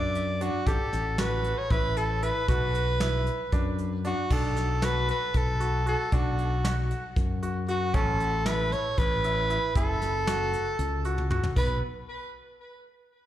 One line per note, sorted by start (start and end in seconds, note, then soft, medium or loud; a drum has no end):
0.00 0.49 F#2 medium
0.00 0.26 D4 medium
0.00 0.43 D5 loud
0.15 closed hi-hat medium
0.41 0.59 D4 medium
0.41 0.69 F#4 medium
0.41 closed hi-hat medium
0.67 0.77 A1 medium
0.67 1.03 G4 medium
0.67 1.19 A4 medium
0.67 kick loud
0.67 closed hi-hat medium
0.93 1.53 A1 medium
0.93 snare soft
0.93 closed hi-hat medium
1.18 1.55 F#4 medium
1.18 1.59 B4 medium
1.18 snare loud
1.18 closed hi-hat medium
1.44 closed hi-hat medium
1.58 1.73 C#5 medium
1.70 2.30 A1 medium
1.70 2.07 E4 medium
1.70 1.98 B4 medium
1.70 kick loud
1.70 closed hi-hat medium
1.97 2.25 A4 medium
1.97 closed hi-hat medium
2.22 2.41 E4 medium
2.22 2.48 B4 medium
2.22 closed hi-hat medium
2.48 3.28 B1 medium
2.48 2.85 F#4 medium
2.48 3.75 B4 medium
2.48 kick loud
2.48 closed hi-hat medium
2.75 closed hi-hat medium
3.00 3.37 E4 medium
3.00 snare loud
3.00 closed hi-hat medium
3.26 closed hi-hat medium
3.52 4.12 F#2 medium
3.52 3.89 D4 medium
3.52 kick medium
3.52 closed hi-hat medium
3.78 closed hi-hat medium
4.04 4.23 D4 medium
4.04 4.34 F#4 medium
4.04 closed hi-hat medium
4.30 5.10 B1 medium
4.30 4.67 D4 medium
4.30 4.86 A4 medium
4.30 kick loud
4.30 crash medium
4.56 snare soft
4.56 closed hi-hat medium
4.82 5.19 F#4 medium
4.82 5.10 B4 medium
4.82 snare loud
4.82 closed hi-hat medium
5.08 5.38 B4 medium
5.08 closed hi-hat medium
5.34 5.94 B1 medium
5.34 5.87 A4 medium
5.34 kick medium
5.34 closed hi-hat medium
5.60 5.79 F#4 medium
5.60 closed hi-hat medium
5.86 6.05 F#4 medium
5.86 6.16 A4 medium
5.86 closed hi-hat medium
6.12 6.92 B1 medium
6.12 6.49 D4 medium
6.12 6.91 F#4 medium
6.12 kick loud
6.12 closed hi-hat medium
6.38 closed hi-hat medium
6.64 7.01 F#4 medium
6.64 snare loud
6.64 closed hi-hat medium
6.91 closed hi-hat medium
7.16 7.96 F#2 medium
7.16 kick loud
7.16 closed hi-hat medium
7.43 7.61 F#4 medium
7.43 closed hi-hat medium
7.68 7.87 F#4 medium
7.68 7.96 F#4 medium
7.68 closed hi-hat medium
7.94 8.74 A1 loud
7.94 8.31 C#4 medium
7.94 8.47 A4 loud
7.94 kick loud
7.94 closed hi-hat medium
8.20 closed hi-hat medium
8.46 8.83 E4 medium
8.46 8.74 B4 medium
8.46 snare loud
8.46 closed hi-hat medium
8.72 8.99 C#5 loud
8.72 closed hi-hat medium
8.98 9.57 A1 medium
8.98 9.75 B4 loud
8.98 kick medium
8.98 closed hi-hat medium
9.24 9.42 E4 medium
9.24 closed hi-hat medium
9.50 9.68 E4 medium
9.50 closed hi-hat medium
9.75 10.55 F#1 loud
9.75 10.12 E4 medium
9.75 11.27 A4 loud
9.75 kick loud
9.75 closed hi-hat medium
10.02 snare soft
10.02 closed hi-hat medium
10.27 10.64 F#4 medium
10.27 snare loud
10.27 closed hi-hat medium
10.53 closed hi-hat medium
10.79 11.38 C#2 medium
10.79 closed hi-hat medium
11.05 11.23 F#4 medium
11.05 closed hi-hat medium
11.18 high tom medium
11.30 11.49 F#4 medium
11.30 mid tom medium
11.44 floor tom loud
11.56 11.81 B1 medium
11.56 11.81 B3 medium
11.56 11.81 B4 medium
11.56 kick loud
11.56 crash medium